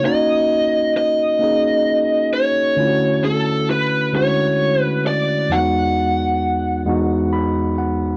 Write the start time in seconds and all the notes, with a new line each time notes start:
0.03 A#3 C#4 D#4 D#5
0.07 F#4
0.97 D#5
1.39 A#3 C#4 D#4
1.44 G#4
2.33 C#5
2.76 D3 A3 C#4 E4
2.81 F4
2.87 F#4
3.24 A4
3.71 B4
4.12 D3 G#3 C#4 E4 C#5
4.17 F#4
4.82 B4
5.07 D5
5.49 E2 F#3 B3 D#4 F#5
5.54 G#3 F#4
6.85 E2 G#3 B3 D#4
6.89 F#4
7.33 B5
7.78 F#5